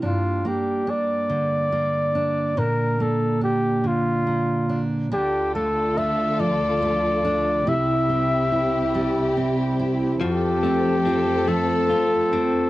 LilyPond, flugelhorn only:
\new Staff \with { instrumentName = "Flugelhorn" } { \time 6/8 \key f \major \tempo 4. = 47 f'8 g'8 d''2 | bes'8 a'8 g'8 f'4 r8 | g'8 a'8 e''8 d''4. | e''2 r4 |
g'4. a'4. | }